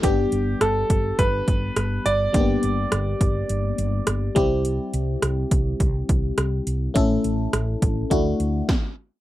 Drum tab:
HH |xxxxxxxx|xxxxxxxx|xxxxxxxx|xxxxxx--|
SD |--r---r-|--r---r-|--r---r-|--r---o-|
BD |o--ooo--|o--o---o|---ooo--|o--oo-o-|